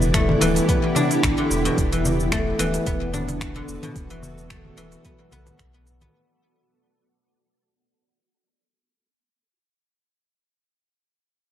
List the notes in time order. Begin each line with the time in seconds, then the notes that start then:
Already playing: E1 B2 E3 A3 B3 D4 E4 G4 D5
0.02 shaker
0.14 A3, finger snap, kick, open hi-hat, shaker
0.29 low conga
0.41 D1 E3, open hi-hat, darbuka tek, shaker
0.56 open hi-hat, darbuka ka, shaker
0.69 B3, kick, open hi-hat, shaker
0.84 darbuka ka
0.95 D4, darbuka tek, darbuka dum, shaker
1.11 open hi-hat, darbuka ka, shaker
1.23 A1, finger snap, kick, open hi-hat, darbuka tek, shaker
1.38 D3
1.50 E1, darbuka ka, darbuka tek, shaker
1.65 B2, open hi-hat, shaker
1.78 E1 B3, kick, open hi-hat, shaker
1.92 E3, open hi-hat
2.05 darbuka dum, shaker
2.20 shaker
2.32 A3 F#4, finger snap, kick, open hi-hat, shaker
2.59 D1 E3, open hi-hat, shaker
2.74 open hi-hat, darbuka ka, shaker
2.85 E1 B3 A4, kick, open hi-hat, shaker
3.14 D4, darbuka ka, darbuka tek, low conga, shaker
3.28 open hi-hat, darbuka ka, darbuka dum, shaker
3.41 finger snap, kick, open hi-hat, shaker
3.56 D3, darbuka ka, darbuka tek
3.68 E1, shaker
3.83 B2, open hi-hat, low conga, shaker
3.96 E1, kick, open hi-hat, shaker
4.10 E3, open hi-hat
4.23 darbuka dum, shaker
4.38 shaker
4.50 A3, finger snap, kick, open hi-hat, shaker
4.65 low conga
4.77 D1 E3, open hi-hat, darbuka tek, shaker
4.92 open hi-hat, darbuka ka, shaker
5.05 B3, kick, open hi-hat, shaker
5.19 darbuka ka
5.32 B1 B3, darbuka tek, darbuka dum, shaker
5.46 open hi-hat, darbuka ka, low conga, shaker
5.59 B1, finger snap, kick, open hi-hat, darbuka tek, shaker
5.74 B3, darbuka tek
5.87 open hi-hat, darbuka ka, darbuka tek, shaker
6.01 B3, open hi-hat, low conga, shaker